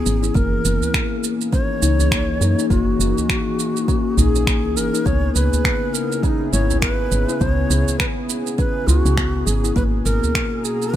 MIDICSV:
0, 0, Header, 1, 7, 480
1, 0, Start_track
1, 0, Tempo, 588235
1, 286, Time_signature, 4, 2, 24, 8
1, 8945, End_track
2, 0, Start_track
2, 0, Title_t, "Native American-style wooden flute"
2, 0, Program_c, 0, 77
2, 0, Note_on_c, 0, 68, 96
2, 280, Note_on_c, 0, 70, 93
2, 293, Note_off_c, 0, 68, 0
2, 1026, Note_off_c, 0, 70, 0
2, 1248, Note_on_c, 0, 73, 102
2, 2174, Note_off_c, 0, 73, 0
2, 2209, Note_on_c, 0, 66, 89
2, 3409, Note_on_c, 0, 68, 102
2, 3421, Note_off_c, 0, 66, 0
2, 3888, Note_on_c, 0, 70, 100
2, 3900, Note_off_c, 0, 68, 0
2, 4127, Note_on_c, 0, 73, 109
2, 4139, Note_off_c, 0, 70, 0
2, 4359, Note_off_c, 0, 73, 0
2, 4363, Note_on_c, 0, 71, 100
2, 4842, Note_on_c, 0, 70, 98
2, 4854, Note_off_c, 0, 71, 0
2, 5087, Note_on_c, 0, 64, 92
2, 5099, Note_off_c, 0, 70, 0
2, 5122, Note_on_c, 0, 63, 100
2, 5130, Note_off_c, 0, 64, 0
2, 5316, Note_off_c, 0, 63, 0
2, 5320, Note_on_c, 0, 73, 102
2, 5546, Note_off_c, 0, 73, 0
2, 5561, Note_on_c, 0, 71, 106
2, 6040, Note_on_c, 0, 73, 106
2, 6053, Note_off_c, 0, 71, 0
2, 6515, Note_off_c, 0, 73, 0
2, 6520, Note_on_c, 0, 71, 87
2, 6575, Note_off_c, 0, 71, 0
2, 7004, Note_on_c, 0, 71, 88
2, 7239, Note_on_c, 0, 65, 101
2, 7251, Note_off_c, 0, 71, 0
2, 7337, Note_off_c, 0, 65, 0
2, 7337, Note_on_c, 0, 66, 101
2, 7718, Note_on_c, 0, 68, 88
2, 7731, Note_off_c, 0, 66, 0
2, 7962, Note_off_c, 0, 68, 0
2, 7966, Note_on_c, 0, 71, 102
2, 8020, Note_off_c, 0, 71, 0
2, 8204, Note_on_c, 0, 70, 109
2, 8683, Note_on_c, 0, 68, 95
2, 8696, Note_off_c, 0, 70, 0
2, 8935, Note_off_c, 0, 68, 0
2, 8945, End_track
3, 0, Start_track
3, 0, Title_t, "Kalimba"
3, 0, Program_c, 1, 108
3, 46, Note_on_c, 1, 61, 74
3, 173, Note_off_c, 1, 61, 0
3, 185, Note_on_c, 1, 64, 69
3, 274, Note_off_c, 1, 64, 0
3, 281, Note_on_c, 1, 58, 99
3, 418, Note_off_c, 1, 58, 0
3, 1244, Note_on_c, 1, 61, 92
3, 1475, Note_off_c, 1, 61, 0
3, 1485, Note_on_c, 1, 63, 78
3, 1620, Note_off_c, 1, 63, 0
3, 1626, Note_on_c, 1, 61, 72
3, 1683, Note_off_c, 1, 61, 0
3, 1727, Note_on_c, 1, 58, 103
3, 1807, Note_off_c, 1, 58, 0
3, 1967, Note_on_c, 1, 61, 73
3, 2094, Note_off_c, 1, 61, 0
3, 2111, Note_on_c, 1, 63, 64
3, 2197, Note_off_c, 1, 63, 0
3, 2209, Note_on_c, 1, 58, 107
3, 2342, Note_off_c, 1, 58, 0
3, 3168, Note_on_c, 1, 61, 100
3, 3397, Note_off_c, 1, 61, 0
3, 3412, Note_on_c, 1, 63, 78
3, 3544, Note_off_c, 1, 63, 0
3, 3555, Note_on_c, 1, 61, 73
3, 3607, Note_off_c, 1, 61, 0
3, 3651, Note_on_c, 1, 58, 97
3, 3729, Note_off_c, 1, 58, 0
3, 3892, Note_on_c, 1, 61, 78
3, 4017, Note_off_c, 1, 61, 0
3, 4031, Note_on_c, 1, 63, 66
3, 4117, Note_off_c, 1, 63, 0
3, 4129, Note_on_c, 1, 59, 109
3, 4262, Note_off_c, 1, 59, 0
3, 5089, Note_on_c, 1, 61, 97
3, 5318, Note_off_c, 1, 61, 0
3, 5328, Note_on_c, 1, 64, 78
3, 5462, Note_off_c, 1, 64, 0
3, 5469, Note_on_c, 1, 61, 75
3, 5524, Note_off_c, 1, 61, 0
3, 5563, Note_on_c, 1, 59, 94
3, 5645, Note_off_c, 1, 59, 0
3, 5804, Note_on_c, 1, 61, 78
3, 5932, Note_off_c, 1, 61, 0
3, 5948, Note_on_c, 1, 64, 67
3, 6036, Note_off_c, 1, 64, 0
3, 6048, Note_on_c, 1, 59, 106
3, 6182, Note_off_c, 1, 59, 0
3, 7003, Note_on_c, 1, 61, 101
3, 7234, Note_off_c, 1, 61, 0
3, 7247, Note_on_c, 1, 64, 73
3, 7381, Note_off_c, 1, 64, 0
3, 7390, Note_on_c, 1, 61, 71
3, 7445, Note_off_c, 1, 61, 0
3, 7486, Note_on_c, 1, 59, 97
3, 7567, Note_off_c, 1, 59, 0
3, 7727, Note_on_c, 1, 61, 75
3, 7854, Note_off_c, 1, 61, 0
3, 7866, Note_on_c, 1, 64, 67
3, 7955, Note_off_c, 1, 64, 0
3, 7963, Note_on_c, 1, 58, 113
3, 8099, Note_off_c, 1, 58, 0
3, 8945, End_track
4, 0, Start_track
4, 0, Title_t, "Analog synth pad"
4, 0, Program_c, 2, 89
4, 0, Note_on_c, 2, 52, 83
4, 0, Note_on_c, 2, 59, 80
4, 0, Note_on_c, 2, 61, 88
4, 0, Note_on_c, 2, 68, 86
4, 273, Note_off_c, 2, 52, 0
4, 283, Note_on_c, 2, 52, 71
4, 287, Note_off_c, 2, 59, 0
4, 338, Note_on_c, 2, 58, 68
4, 1017, Note_on_c, 2, 63, 81
4, 1114, Note_off_c, 2, 61, 0
4, 4124, Note_off_c, 2, 52, 0
4, 4125, Note_off_c, 2, 58, 0
4, 4125, Note_off_c, 2, 63, 0
4, 4126, Note_on_c, 2, 49, 86
4, 4286, Note_on_c, 2, 59, 79
4, 4535, Note_on_c, 2, 64, 70
4, 7964, Note_on_c, 2, 47, 74
4, 7965, Note_off_c, 2, 59, 0
4, 7966, Note_off_c, 2, 49, 0
4, 7967, Note_off_c, 2, 64, 0
4, 8179, Note_on_c, 2, 66, 73
4, 8351, Note_on_c, 2, 82, 73
4, 8945, Note_off_c, 2, 47, 0
4, 8945, Note_off_c, 2, 66, 0
4, 8945, Note_off_c, 2, 68, 0
4, 8945, Note_off_c, 2, 82, 0
4, 8945, End_track
5, 0, Start_track
5, 0, Title_t, "FM bass"
5, 0, Program_c, 3, 39
5, 52, Note_on_c, 3, 32, 90
5, 254, Note_off_c, 3, 32, 0
5, 289, Note_on_c, 3, 30, 105
5, 493, Note_off_c, 3, 30, 0
5, 530, Note_on_c, 3, 30, 84
5, 645, Note_off_c, 3, 30, 0
5, 1490, Note_on_c, 3, 37, 87
5, 1940, Note_off_c, 3, 37, 0
5, 1968, Note_on_c, 3, 42, 79
5, 2084, Note_off_c, 3, 42, 0
5, 2206, Note_on_c, 3, 30, 94
5, 2411, Note_off_c, 3, 30, 0
5, 2443, Note_on_c, 3, 30, 78
5, 2561, Note_off_c, 3, 30, 0
5, 3407, Note_on_c, 3, 34, 92
5, 3791, Note_on_c, 3, 37, 91
5, 3803, Note_off_c, 3, 34, 0
5, 3888, Note_on_c, 3, 30, 88
5, 3901, Note_off_c, 3, 37, 0
5, 4004, Note_off_c, 3, 30, 0
5, 4128, Note_on_c, 3, 37, 99
5, 4333, Note_off_c, 3, 37, 0
5, 4372, Note_on_c, 3, 37, 77
5, 4486, Note_off_c, 3, 37, 0
5, 5330, Note_on_c, 3, 32, 94
5, 5780, Note_off_c, 3, 32, 0
5, 5807, Note_on_c, 3, 32, 80
5, 5924, Note_off_c, 3, 32, 0
5, 6046, Note_on_c, 3, 37, 102
5, 6251, Note_off_c, 3, 37, 0
5, 6286, Note_on_c, 3, 37, 79
5, 6403, Note_off_c, 3, 37, 0
5, 7243, Note_on_c, 3, 37, 86
5, 7362, Note_off_c, 3, 37, 0
5, 7387, Note_on_c, 3, 37, 93
5, 7698, Note_off_c, 3, 37, 0
5, 7725, Note_on_c, 3, 32, 96
5, 7931, Note_off_c, 3, 32, 0
5, 7965, Note_on_c, 3, 32, 94
5, 8171, Note_off_c, 3, 32, 0
5, 8206, Note_on_c, 3, 32, 80
5, 8323, Note_off_c, 3, 32, 0
5, 8945, End_track
6, 0, Start_track
6, 0, Title_t, "Udu"
6, 659, Note_on_c, 9, 64, 86
6, 741, Note_off_c, 9, 64, 0
6, 1630, Note_on_c, 9, 64, 80
6, 1711, Note_off_c, 9, 64, 0
6, 2592, Note_on_c, 9, 64, 80
6, 2674, Note_off_c, 9, 64, 0
6, 3408, Note_on_c, 9, 64, 95
6, 3490, Note_off_c, 9, 64, 0
6, 4513, Note_on_c, 9, 64, 75
6, 4594, Note_off_c, 9, 64, 0
6, 5472, Note_on_c, 9, 64, 84
6, 5553, Note_off_c, 9, 64, 0
6, 6428, Note_on_c, 9, 64, 77
6, 6509, Note_off_c, 9, 64, 0
6, 7245, Note_on_c, 9, 64, 91
6, 7327, Note_off_c, 9, 64, 0
6, 8350, Note_on_c, 9, 64, 75
6, 8432, Note_off_c, 9, 64, 0
6, 8945, End_track
7, 0, Start_track
7, 0, Title_t, "Drums"
7, 50, Note_on_c, 9, 82, 75
7, 131, Note_off_c, 9, 82, 0
7, 193, Note_on_c, 9, 82, 46
7, 275, Note_off_c, 9, 82, 0
7, 287, Note_on_c, 9, 36, 106
7, 291, Note_on_c, 9, 82, 35
7, 369, Note_off_c, 9, 36, 0
7, 373, Note_off_c, 9, 82, 0
7, 531, Note_on_c, 9, 82, 81
7, 613, Note_off_c, 9, 82, 0
7, 674, Note_on_c, 9, 82, 45
7, 755, Note_off_c, 9, 82, 0
7, 766, Note_on_c, 9, 36, 106
7, 770, Note_on_c, 9, 26, 96
7, 773, Note_on_c, 9, 82, 31
7, 848, Note_off_c, 9, 36, 0
7, 852, Note_off_c, 9, 26, 0
7, 854, Note_off_c, 9, 82, 0
7, 1010, Note_on_c, 9, 82, 87
7, 1091, Note_off_c, 9, 82, 0
7, 1153, Note_on_c, 9, 82, 49
7, 1234, Note_off_c, 9, 82, 0
7, 1246, Note_on_c, 9, 36, 107
7, 1251, Note_on_c, 9, 82, 37
7, 1328, Note_off_c, 9, 36, 0
7, 1333, Note_off_c, 9, 82, 0
7, 1489, Note_on_c, 9, 82, 77
7, 1571, Note_off_c, 9, 82, 0
7, 1632, Note_on_c, 9, 82, 46
7, 1713, Note_off_c, 9, 82, 0
7, 1726, Note_on_c, 9, 36, 112
7, 1729, Note_on_c, 9, 26, 100
7, 1732, Note_on_c, 9, 82, 37
7, 1808, Note_off_c, 9, 36, 0
7, 1810, Note_off_c, 9, 26, 0
7, 1813, Note_off_c, 9, 82, 0
7, 1971, Note_on_c, 9, 82, 80
7, 2053, Note_off_c, 9, 82, 0
7, 2115, Note_on_c, 9, 82, 49
7, 2196, Note_off_c, 9, 82, 0
7, 2206, Note_on_c, 9, 36, 107
7, 2213, Note_on_c, 9, 82, 34
7, 2287, Note_off_c, 9, 36, 0
7, 2294, Note_off_c, 9, 82, 0
7, 2452, Note_on_c, 9, 82, 83
7, 2534, Note_off_c, 9, 82, 0
7, 2595, Note_on_c, 9, 82, 44
7, 2677, Note_off_c, 9, 82, 0
7, 2687, Note_on_c, 9, 36, 104
7, 2690, Note_on_c, 9, 26, 95
7, 2692, Note_on_c, 9, 82, 36
7, 2769, Note_off_c, 9, 36, 0
7, 2771, Note_off_c, 9, 26, 0
7, 2774, Note_off_c, 9, 82, 0
7, 2933, Note_on_c, 9, 82, 75
7, 3014, Note_off_c, 9, 82, 0
7, 3074, Note_on_c, 9, 82, 45
7, 3155, Note_off_c, 9, 82, 0
7, 3167, Note_on_c, 9, 36, 103
7, 3173, Note_on_c, 9, 82, 34
7, 3249, Note_off_c, 9, 36, 0
7, 3254, Note_off_c, 9, 82, 0
7, 3411, Note_on_c, 9, 82, 76
7, 3493, Note_off_c, 9, 82, 0
7, 3553, Note_on_c, 9, 82, 47
7, 3635, Note_off_c, 9, 82, 0
7, 3647, Note_on_c, 9, 36, 113
7, 3650, Note_on_c, 9, 26, 97
7, 3653, Note_on_c, 9, 82, 33
7, 3729, Note_off_c, 9, 36, 0
7, 3732, Note_off_c, 9, 26, 0
7, 3734, Note_off_c, 9, 82, 0
7, 3892, Note_on_c, 9, 82, 76
7, 3974, Note_off_c, 9, 82, 0
7, 4037, Note_on_c, 9, 82, 47
7, 4118, Note_off_c, 9, 82, 0
7, 4127, Note_on_c, 9, 36, 112
7, 4133, Note_on_c, 9, 82, 32
7, 4209, Note_off_c, 9, 36, 0
7, 4214, Note_off_c, 9, 82, 0
7, 4371, Note_on_c, 9, 82, 76
7, 4453, Note_off_c, 9, 82, 0
7, 4516, Note_on_c, 9, 82, 43
7, 4598, Note_off_c, 9, 82, 0
7, 4607, Note_on_c, 9, 36, 103
7, 4611, Note_on_c, 9, 26, 93
7, 4613, Note_on_c, 9, 82, 31
7, 4688, Note_off_c, 9, 36, 0
7, 4692, Note_off_c, 9, 26, 0
7, 4695, Note_off_c, 9, 82, 0
7, 4852, Note_on_c, 9, 82, 75
7, 4933, Note_off_c, 9, 82, 0
7, 4996, Note_on_c, 9, 82, 43
7, 5077, Note_off_c, 9, 82, 0
7, 5086, Note_on_c, 9, 36, 105
7, 5091, Note_on_c, 9, 82, 35
7, 5167, Note_off_c, 9, 36, 0
7, 5173, Note_off_c, 9, 82, 0
7, 5331, Note_on_c, 9, 82, 76
7, 5412, Note_off_c, 9, 82, 0
7, 5472, Note_on_c, 9, 82, 43
7, 5554, Note_off_c, 9, 82, 0
7, 5566, Note_on_c, 9, 36, 106
7, 5568, Note_on_c, 9, 26, 93
7, 5571, Note_on_c, 9, 82, 32
7, 5648, Note_off_c, 9, 36, 0
7, 5650, Note_off_c, 9, 26, 0
7, 5652, Note_off_c, 9, 82, 0
7, 5809, Note_on_c, 9, 82, 73
7, 5890, Note_off_c, 9, 82, 0
7, 5950, Note_on_c, 9, 82, 47
7, 6032, Note_off_c, 9, 82, 0
7, 6046, Note_on_c, 9, 36, 100
7, 6048, Note_on_c, 9, 82, 31
7, 6128, Note_off_c, 9, 36, 0
7, 6130, Note_off_c, 9, 82, 0
7, 6289, Note_on_c, 9, 82, 78
7, 6370, Note_off_c, 9, 82, 0
7, 6431, Note_on_c, 9, 82, 44
7, 6513, Note_off_c, 9, 82, 0
7, 6526, Note_on_c, 9, 26, 96
7, 6527, Note_on_c, 9, 36, 94
7, 6529, Note_on_c, 9, 82, 32
7, 6608, Note_off_c, 9, 26, 0
7, 6608, Note_off_c, 9, 36, 0
7, 6611, Note_off_c, 9, 82, 0
7, 6769, Note_on_c, 9, 82, 80
7, 6851, Note_off_c, 9, 82, 0
7, 6910, Note_on_c, 9, 82, 43
7, 6992, Note_off_c, 9, 82, 0
7, 7006, Note_on_c, 9, 36, 99
7, 7010, Note_on_c, 9, 82, 33
7, 7088, Note_off_c, 9, 36, 0
7, 7091, Note_off_c, 9, 82, 0
7, 7250, Note_on_c, 9, 82, 77
7, 7332, Note_off_c, 9, 82, 0
7, 7392, Note_on_c, 9, 82, 43
7, 7473, Note_off_c, 9, 82, 0
7, 7485, Note_on_c, 9, 36, 101
7, 7487, Note_on_c, 9, 26, 90
7, 7490, Note_on_c, 9, 82, 31
7, 7567, Note_off_c, 9, 36, 0
7, 7568, Note_off_c, 9, 26, 0
7, 7571, Note_off_c, 9, 82, 0
7, 7729, Note_on_c, 9, 82, 80
7, 7810, Note_off_c, 9, 82, 0
7, 7872, Note_on_c, 9, 82, 44
7, 7953, Note_off_c, 9, 82, 0
7, 7965, Note_on_c, 9, 36, 104
7, 7970, Note_on_c, 9, 82, 31
7, 8047, Note_off_c, 9, 36, 0
7, 8051, Note_off_c, 9, 82, 0
7, 8209, Note_on_c, 9, 82, 73
7, 8290, Note_off_c, 9, 82, 0
7, 8353, Note_on_c, 9, 82, 41
7, 8435, Note_off_c, 9, 82, 0
7, 8444, Note_on_c, 9, 36, 92
7, 8447, Note_on_c, 9, 26, 90
7, 8450, Note_on_c, 9, 82, 31
7, 8526, Note_off_c, 9, 36, 0
7, 8529, Note_off_c, 9, 26, 0
7, 8531, Note_off_c, 9, 82, 0
7, 8688, Note_on_c, 9, 82, 74
7, 8770, Note_off_c, 9, 82, 0
7, 8830, Note_on_c, 9, 82, 41
7, 8912, Note_off_c, 9, 82, 0
7, 8945, End_track
0, 0, End_of_file